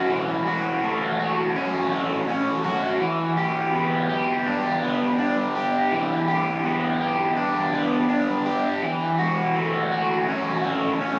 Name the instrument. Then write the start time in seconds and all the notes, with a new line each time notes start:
overdriven electric guitar
Already playing: A3 C#4 F#4
0.10 E3
0.47 F#4
0.83 A3
1.20 F#4
1.56 C#4
1.92 A3
2.28 C#4
2.64 F#4
3.00 E3
3.37 G4
3.73 B3
4.09 G4
4.46 D4
4.83 B3
5.18 D4
5.55 G4
5.92 E3
6.28 G4
6.64 B3
7.01 G4
7.36 D4
7.74 B3
8.09 D4
8.46 G4
8.82 E3
9.19 F#4
9.55 A3
9.92 F#4
10.29 C#4
10.65 A3
11.01 C#4